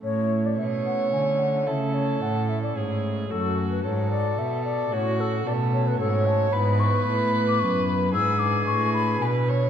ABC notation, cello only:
X:1
M:3/4
L:1/8
Q:1/4=111
K:A
V:1 name="Cello" clef=bass
A,,2 B,,2 D,2 | C,2 A,,2 G,,2 | F,,2 G,,2 B,,2 | A,,2 B,,2 G,,2 |
G,,2 A,,2 F,,2 | G,,2 A,,2 B,,2 |]